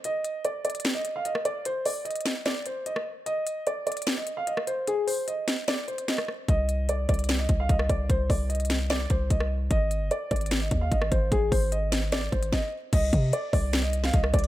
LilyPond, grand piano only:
\new Staff \with { instrumentName = "Grand piano" } { \time 4/4 \key c \minor \tempo 4 = 149 ees''4 d''8 d''8. ees''8 f''16 ees''8 d''8 | c''8 d''8 ees''4 d''8 c''8 ees''8 r8 | ees''4 d''8 d''8. ees''8 f''16 ees''8 c''8 | aes'8 c''8 ees''4 d''8 c''8 ees''8 r8 |
ees''4 d''8 d''8. ees''8 f''16 ees''8 d''8 | c''8 d''8 ees''4 d''8 c''8 ees''8 r8 | ees''4 d''8 d''8. ees''8 f''16 ees''8 c''8 | aes'8 c''8 ees''4 d''8 c''8 ees''8 r8 |
ees''4 d''8 d''8. ees''8 f''16 ees''8 d''8 | }